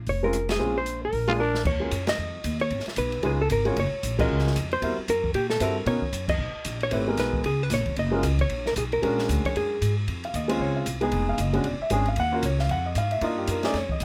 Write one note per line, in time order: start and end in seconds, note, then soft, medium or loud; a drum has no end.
0.07 0.57 F1 medium
0.07 0.25 C#5 medium
0.07 kick soft
0.07 open hi-hat soft
0.23 0.33 G#3 medium
0.23 0.33 C4 medium
0.23 0.33 C#4 medium
0.23 0.34 F4 medium
0.23 0.51 A#4 medium
0.33 cross-stick medium
0.33 closed hi-hat soft
0.49 0.78 G#4 medium
0.49 snare medium
0.49 ride medium
0.59 1.11 A#1 medium
0.59 0.74 G#3 medium
0.59 0.74 C4 medium
0.59 0.74 C#4 medium
0.59 0.75 F4 medium
0.78 1.01 C5 medium
0.86 closed hi-hat soft
1.05 1.39 A#4 medium
1.13 1.63 A#1 medium
1.13 kick soft
1.13 open hi-hat soft
1.28 1.38 G#3 medium
1.28 1.38 A#3 medium
1.28 1.39 D4 medium
1.28 1.33 F4 medium
1.28 1.39 F4 medium
1.28 1.39 G#4 medium
1.39 1.64 D4 medium
1.39 1.66 A#4 medium
1.55 snare medium
1.65 1.91 D#2 medium
1.65 2.05 C#5 medium
1.65 kick medium
1.65 crash medium
1.80 1.90 G#3 soft
1.80 1.91 C#4 soft
1.80 1.91 F4 soft
1.80 1.91 F#4 soft
1.80 1.91 A#4 medium
1.91 2.17 F#2 medium
1.91 kick soft
1.91 hi-hat pedal soft
1.91 ride medium
2.07 2.61 D#5 loud
2.07 snare medium
2.07 ride medium
2.18 2.43 F2 medium
2.44 2.70 D#2 medium
2.44 kick soft
2.44 hi-hat pedal medium
2.44 ride medium
2.60 2.86 C#5 loud
2.60 ride soft
2.70 2.85 G#1 medium
2.70 kick soft
2.70 ride medium
2.79 snare soft
2.86 muted upright bass stroke soft
2.86 snare soft
2.86 ride soft
2.96 3.22 B1 medium
2.96 3.22 B4 medium
2.96 kick soft
2.96 hi-hat pedal medium
2.96 ride medium
3.12 ride soft
3.23 3.49 C#2 medium
3.23 3.38 G#3 medium
3.23 3.38 C#4 medium
3.23 3.38 D#4 medium
3.23 3.38 F4 medium
3.23 3.31 G#4 medium
3.23 3.39 B4 medium
3.23 kick soft
3.23 ride medium
3.42 3.51 A4 medium
3.50 3.76 G#1 medium
3.50 3.78 A#4 medium
3.50 kick soft
3.50 hi-hat pedal medium
3.50 ride medium
3.65 3.75 G#3 medium
3.65 3.76 C#4 medium
3.65 3.76 F4 medium
3.65 3.76 F#4 medium
3.65 3.76 C#5 medium
3.65 ride soft
3.76 3.91 F#1 medium
3.76 4.20 C#5 loud
3.76 kick soft
3.76 ride medium
3.92 muted upright bass stroke soft
4.03 4.29 A#1 medium
4.03 kick soft
4.03 hi-hat pedal medium
4.03 ride medium
4.19 4.53 G#3 medium
4.19 4.54 C#4 medium
4.19 4.54 F4 medium
4.19 4.54 F#4 medium
4.19 4.54 A#4 medium
4.19 4.72 D#5 medium
4.19 kick medium
4.19 crash medium
4.29 4.55 C#2 medium
4.39 snare soft
4.47 snare soft
4.56 4.81 F2 medium
4.56 kick soft
4.56 hi-hat pedal medium
4.56 ride medium
4.71 4.97 C5 medium
4.71 ride soft
4.81 4.97 E2 medium
4.81 4.96 G3 medium
4.81 4.96 C4 medium
4.81 4.96 E4 medium
4.81 4.96 F#4 medium
4.81 4.97 A#4 medium
4.81 kick soft
4.81 ride medium
4.98 muted upright bass stroke soft
5.08 5.34 F#2 medium
5.08 5.35 A#4 medium
5.08 kick soft
5.08 hi-hat pedal medium
5.08 ride medium
5.24 kick medium
5.34 5.60 A#2 medium
5.34 5.49 G4 medium
5.34 kick soft
5.34 ride medium
5.50 5.62 A4 medium
5.50 snare medium
5.60 5.86 G2 medium
5.60 5.74 G3 medium
5.60 5.75 C4 medium
5.60 5.75 E4 medium
5.60 5.75 F#4 medium
5.60 5.75 A4 medium
5.60 5.89 A#4 medium
5.60 kick soft
5.60 hi-hat pedal medium
5.60 ride medium
5.86 6.01 B2 medium
5.86 6.01 B3 medium
5.86 6.01 C#4 medium
5.86 6.01 D#4 medium
5.86 6.01 F#4 medium
5.86 6.01 A#4 medium
5.86 6.26 C#5 medium
5.86 kick soft
5.86 ride medium
6.02 muted upright bass stroke soft
6.02 kick medium
6.13 6.38 F#2 medium
6.13 kick soft
6.13 hi-hat pedal medium
6.13 ride medium
6.28 6.78 D#5 loud
6.28 kick medium
6.28 crash medium
6.38 6.53 B1 medium
6.54 muted upright bass stroke soft
6.65 6.91 A#1 medium
6.65 kick soft
6.65 hi-hat pedal medium
6.65 ride medium
6.80 7.07 C#5 loud
6.80 ride soft
6.91 7.17 G#1 medium
6.91 7.06 A3 medium
6.91 7.06 C4 medium
6.91 7.06 E4 medium
6.91 7.06 G4 medium
6.91 7.07 B4 medium
6.91 kick soft
6.91 ride medium
7.07 7.45 G#3 medium
7.07 7.45 B3 medium
7.07 7.45 D#4 medium
7.07 7.45 F#4 medium
7.07 7.45 A#4 medium
7.17 7.44 B1 medium
7.17 7.44 B4 medium
7.17 kick soft
7.17 snare soft
7.17 hi-hat pedal soft
7.17 ride medium
7.34 kick medium
7.44 7.70 C#2 medium
7.44 7.63 G#4 medium
7.44 kick soft
7.44 ride medium
7.63 7.73 B4 medium
7.70 7.80 A#1 medium
7.70 7.99 C#5 medium
7.70 kick soft
7.70 snare soft
7.70 hi-hat pedal medium
7.70 ride medium
7.80 7.87 G#1 medium
7.86 7.96 F1 medium
7.86 kick medium
7.86 ride soft
7.96 8.22 F#1 medium
7.96 8.37 D#5 loud
7.96 kick soft
7.96 ride medium
8.11 8.22 G#3 medium
8.11 8.22 C#4 medium
8.11 8.22 F4 medium
8.11 8.23 F#4 medium
8.11 8.23 A#4 medium
8.23 8.49 C#2 loud
8.23 kick soft
8.23 hi-hat pedal medium
8.23 ride medium
8.39 8.67 C#5 medium
8.39 kick soft
8.39 ride soft
8.50 8.75 A#1 medium
8.50 ride medium
8.66 8.76 A#4 medium
8.66 snare soft
8.76 9.02 B1 loud
8.76 8.83 G#4 medium
8.76 kick soft
8.76 hi-hat pedal medium
8.76 ride medium
8.92 9.27 A#4 medium
8.92 ride soft
9.02 9.28 A#1 medium
9.02 9.75 G#3 medium
9.02 9.75 C#4 medium
9.02 9.75 D4 medium
9.02 9.75 F#4 medium
9.02 9.75 A#4 medium
9.02 kick soft
9.02 ride medium
9.19 snare soft
9.29 9.43 D2 medium
9.29 kick soft
9.29 hi-hat pedal medium
9.29 ride medium
9.45 9.56 C#5 medium
9.45 muted upright bass stroke soft
9.45 kick medium
9.45 ride soft
9.56 9.81 F#2 medium
9.56 9.95 G#4 medium
9.56 kick soft
9.56 ride medium
9.81 10.07 G#2 medium
9.81 kick soft
9.81 hi-hat pedal medium
9.81 ride medium
10.08 10.33 F2 medium
10.08 kick soft
10.08 ride medium
10.24 10.34 F5 medium
10.24 ride soft
10.34 10.59 D#2 medium
10.34 10.59 D#5 medium
10.34 kick soft
10.34 hi-hat pedal medium
10.34 ride medium
10.48 10.83 G#3 medium
10.48 10.84 C4 medium
10.48 10.84 C#4 medium
10.48 10.85 F4 medium
10.48 ride medium
10.60 10.85 C#2 medium
10.60 10.76 C#5 medium
10.60 kick soft
10.76 10.86 F5 medium
10.86 11.11 C2 medium
10.86 kick soft
10.86 hi-hat pedal medium
10.86 ride medium
11.01 11.36 G#3 medium
11.01 11.37 B3 medium
11.01 11.37 D#4 medium
11.01 11.37 G#4 medium
11.01 ride soft
11.12 11.37 F1 medium
11.12 kick soft
11.12 ride medium
11.29 11.39 F5 medium
11.38 11.64 F#1 loud
11.38 11.64 D#5 medium
11.38 kick soft
11.38 hi-hat pedal medium
11.38 ride medium
11.53 11.63 G#3 medium
11.53 11.64 C#4 medium
11.53 11.64 D4 medium
11.53 11.64 F#4 medium
11.53 ride soft
11.64 11.79 E1 medium
11.64 11.81 D5 medium
11.64 kick soft
11.64 ride medium
11.79 11.88 E5 medium
11.79 muted upright bass stroke soft
11.90 12.16 G#1 medium
11.90 12.05 G#3 medium
11.90 12.05 C#4 medium
11.90 12.06 D4 medium
11.90 12.06 G#4 medium
11.90 kick soft
11.90 hi-hat pedal medium
11.90 ride medium
12.06 12.18 F5 medium
12.06 ride soft
12.16 12.42 D#2 medium
12.16 12.34 F#5 loud
12.16 kick soft
12.16 ride medium
12.32 12.42 A#3 medium
12.32 12.42 C#4 medium
12.32 12.43 F4 medium
12.32 12.43 F#4 medium
12.32 12.44 A#4 medium
12.43 12.69 C#2 medium
12.43 12.60 C#5 medium
12.43 kick soft
12.43 hi-hat pedal medium
12.43 ride medium
12.59 12.70 F5 medium
12.59 snare soft
12.69 12.95 F2 medium
12.69 12.86 F#5 medium
12.69 kick soft
12.69 ride medium
12.86 12.96 D#5 medium
12.95 13.21 G#2 medium
12.95 13.12 F5 loud
12.95 kick soft
12.95 hi-hat pedal medium
12.95 ride medium
13.11 13.22 E5 medium
13.11 ride soft
13.21 13.47 G2 medium
13.21 13.61 A#3 medium
13.21 13.61 D4 medium
13.21 13.61 D#4 medium
13.21 13.61 F4 medium
13.21 13.38 D#5 medium
13.21 kick soft
13.21 ride medium
13.38 13.48 G4 medium
13.47 13.73 F#2 medium
13.47 13.65 A#4 medium
13.47 kick soft
13.47 hi-hat pedal medium
13.47 ride medium
13.63 13.73 A3 medium
13.63 13.73 C#4 medium
13.63 13.74 D#4 medium
13.63 13.74 G#4 medium
13.63 13.75 D5 loud
13.63 snare medium
13.63 ride medium
13.74 14.00 F2 medium
13.74 13.91 C#5 medium
13.74 kick soft
13.74 snare soft
13.74 ride medium
13.90 14.01 D#5 medium
13.90 kick medium
14.00 14.04 C#2 medium
14.00 kick soft
14.00 hi-hat pedal soft
14.00 ride medium